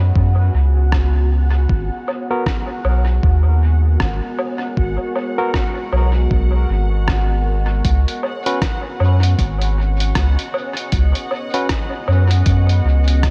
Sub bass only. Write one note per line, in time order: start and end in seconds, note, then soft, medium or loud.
0.00 0.12 F#2 medium
0.16 0.50 F#2 medium
0.54 1.67 C#2 medium
1.70 1.90 G#1 medium
2.85 3.20 B1 medium
3.23 3.97 D#2 medium
4.00 4.21 G#1 loud
4.77 4.98 G#1 medium
5.93 6.27 B1 medium
6.31 6.66 B1 medium
6.70 7.82 G#1 medium
7.85 8.05 C#2 medium
9.00 9.35 F#2 medium
9.39 10.13 G#1 loud
10.16 10.36 C#2 loud
10.93 11.13 C#2 medium
12.08 12.43 F#2 medium
12.46 12.81 F#2 medium
12.85 13.30 C#2 medium